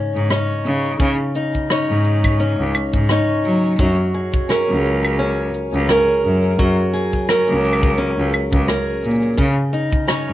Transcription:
Already playing: C#3 C#4 D#4 C#5
0.15 G#2, cabasa
0.30 C#4 D#4 C#5, cross-stick, cabasa
0.65 C#3, cabasa
0.85 cabasa
0.92 cabasa
1.00 C#3, kick, cabasa
1.10 cabasa
1.35 D#4, cabasa
1.55 kick, cabasa
1.70 C#4 D#4 C#5, cross-stick, cabasa
1.89 G#2
2.04 cabasa
2.24 kick, cabasa, claves
2.40 C#4, cabasa
2.59 C#2
2.75 cabasa, claves
2.94 G#2, kick, cabasa
3.09 C#4 D#4 C#5, cross-stick, cabasa
3.45 F#3, cabasa
3.65 cabasa
3.68 cabasa
3.72 cabasa
3.76 F#2, kick, cabasa
3.79 F#3, cabasa
3.85 cabasa
3.90 cabasa
3.95 cabasa
4.14 G#4
4.34 kick, cabasa
4.49 C#4 G#4 A#4, cross-stick, cabasa
4.69 C#2
4.85 cabasa
5.04 cabasa, claves
5.19 C#4, cabasa
5.54 cabasa
5.73 C#2, cabasa
5.89 C#4 G#4 A#4, cross-stick, cabasa
6.24 F#2
6.43 cabasa
6.59 F#2 F#3, kick, cabasa
6.93 G#4, cabasa
7.13 kick, cabasa
7.29 C#4 G#4 A#4, cross-stick
7.47 C#2, cabasa
7.64 cabasa
7.73 claves
7.83 kick, cabasa
7.98 C#4, cabasa
8.18 C#2
8.34 cabasa, claves
8.53 C#2, kick, cabasa
8.68 C#4 G#4 A#4, cross-stick, cabasa
9.03 A#2, cabasa
9.11 cabasa
9.15 cabasa
9.22 cabasa
9.27 cabasa
9.34 C#3, cabasa
9.38 C#3, kick, cabasa
9.73 D#4, cabasa
9.93 kick, cabasa
10.07 C#4 D#4 C#5, cross-stick, cabasa
10.27 G#2

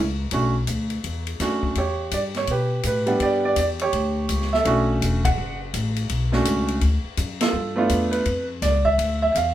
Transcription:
Already playing: C#2
0.31 B1 A3 C#4 D4 F#4, kick, ride
0.67 D2, kick, hi-hat pedal, ride
0.90 ride
1.04 E2, kick, ride
1.27 ride
1.40 F#2 A3 C#4 D4 F#4, kick, snare, hi-hat pedal, ride
1.63 kick
1.75 E2 G4 C#5, kick, ride
2.11 G2 D5, kick, hi-hat pedal, ride
2.34 C#5, snare, ride
2.47 B2 B4, kick, ride
2.51 G4
2.83 A2 B4, kick, hi-hat pedal, ride
3.06 G3 B3 D4 F#5, ride
3.20 G2 G4 D5, kick, ride
3.45 D5
3.56 E2 D5, kick, hi-hat pedal, ride
3.79 G4 C#5, ride
3.93 D2, kick, ride
4.29 C#2, kick, hi-hat pedal, ride
4.42 snare
4.53 A4 E5, snare
4.65 B1 A3 C#4 D4 F#4, kick, ride
5.02 E1, kick, hi-hat pedal, ride
5.25 F#5, kick, ride
5.38 F#1
5.74 A1, kick, hi-hat pedal, ride
5.96 ride
6.09 B1, kick, ride
6.32 A3 C#4 D4 F#4, snare
6.45 C#2, kick, hi-hat pedal, ride
6.68 ride
6.81 D2, kick, ride
7.04 muted upright bass stroke
7.17 F#2, kick, hi-hat pedal, ride
7.40 F4 A4, snare, ride
7.53 G2
7.76 A3 B3 D4 F4
7.89 E2, kick, hi-hat pedal, ride
8.11 B4, ride
8.26 F2, kick, ride
8.62 C#2 D5, kick, snare, hi-hat pedal, ride
8.85 E5, kick
8.98 D2, kick, ride
9.22 E5
9.32 E2 E5, kick, hi-hat pedal, ride
9.37 F5

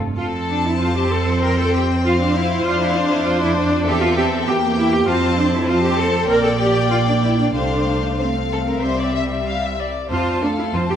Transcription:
Already playing: G2
0.18 F2 C4 F4 A4 A5
0.49 D4
0.65 E4
0.80 F4 C5
0.97 G4
1.11 A4
1.43 A#4 G5
1.59 A4
1.74 G4
2.04 F4 C5 F5
2.20 D4
2.35 E4
2.65 F2 D4 F4 F5
2.81 E4
2.95 D4
3.11 E4
3.26 F4 D5
3.41 E4
3.56 D4
3.86 E2 C4 G4 A4 E5
4.02 F4
4.17 G4
4.47 A#3 G4 G5
4.77 E4
4.93 G4
5.07 F2 C4 F4 C5 A5
5.38 D4
5.53 E4
5.67 C4 F4 C5 A5
5.83 G4
5.98 A4
6.28 A#1 A#3 A#4 D5 G5
6.44 A4
6.59 G4
6.91 F4
7.08 D4
7.23 E4
7.39 D4
7.55 C2 A3 D4 C5 F5
8.19 A3 C4 C5 F5
8.52 A4
8.68 A#4
8.83 C2 G3 C5 E5
8.99 D5
9.15 E5
9.47 F5
9.64 E5
9.79 D5
10.10 F2 C4 F4 C5 A5
10.42 A3 D4 A4 F5
10.58 E4
10.73 F2 C4 F4 C5 A5
10.90 G4

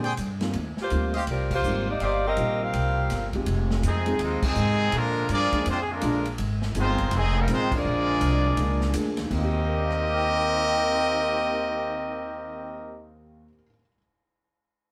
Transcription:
Already playing: A#2
0.04 G#4 C5 D5 G5, ride
0.17 G2, hi-hat pedal, ride
0.41 D#3 G3 A#3 C4 F4, snare, ride
0.53 D#2, ride
0.77 A#3 F4 G4 C5, muted upright bass stroke, snare
0.90 D2 D#3 G3 A#3 C4 F4, hi-hat pedal, ride
1.14 G4 C5 D#5 F5, ride
1.27 C2 G3 C4 F4 A#4, ride
1.51 A#3 F4 G4 C5, kick, crash
1.64 G#1 D#3 G3 A#3 C4 D#4, hi-hat pedal
1.89 A#3 D#4 G4 D5
2.00 G1 A#3 D#4 G4 C5 D5 D#5 F5, ride
2.27 C4 G4 A#4 D#5
2.37 A#1 D#3 G3 A#3 C4 F4, hi-hat pedal, ride
2.60 G3 A#3 C4 F4 G4 A#4 F5
2.73 C2, ride
3.10 G1, snare, hi-hat pedal, ride
3.33 F3 G#3 C4 D#4 G4, kick, ride
3.46 F1, ride
3.71 snare
3.83 F2 C3 D#3 G#3 C4 D#4 G#4, hi-hat pedal, ride
4.06 F3 G#3 C4 D#4 G#4, ride
4.19 D#2 G#2 C3 F3 G#3 C4 D#4 F4, ride
4.42 C3 D#3 G#3 C4 D#4 G#4, kick, crash
4.55 G#2, hi-hat pedal
4.92 A#2 D3 F3 A#3 D4, ride
4.96 G#3 F4 A#4
5.29 G2 F3 G#3 A#3 D4 F4 G#4 D5, hi-hat pedal, ride
5.52 F3 G#3 A#3 D4 G#4, muted upright bass stroke, kick, ride
5.66 F2 G#3 C4 D4 F4 C5, ride
5.80 G#4
5.90 D3 F3 G#3 A#3 D4 F4 A#4
6.01 A#1 F3 G#3 A#3 D4 G#4, hi-hat pedal, ride
6.25 ride
6.38 G#1, ride
6.62 snare
6.75 G1 D#3 F3 G#3 C4 D#4 F4 G#4 C5, hi-hat pedal, ride
6.98 kick, ride
7.11 F1 C3 D#3 G#3 C4 D#4 G#4, ride
7.36 G3 A#3 C4 D#4 A#4
7.48 A1 D#3 F3 G#3 C4 D#4 F4 A#4 C5, hi-hat pedal, ride
7.72 F3 G#3 A#3 D4 F4 D5, kick, crash
7.76 G#4
7.85 A#1
8.21 C2, hi-hat pedal, ride
8.57 C#2 F3 G#3 A#3 D4 G#4, ride
8.81 snare
8.93 D2 F3 G#3 A#3 D4 G#4, hi-hat pedal, ride
9.17 D#2, snare, ride
9.25 D#3
9.31 D#2 D#3 A#3 C4 G4 A#4 D#5, kick, crash
9.38 F4
9.44 G4
9.68 A#4
9.76 D5
9.84 F5
9.91 A#5, cross-stick
10.03 D6
10.14 F6
10.26 A#6

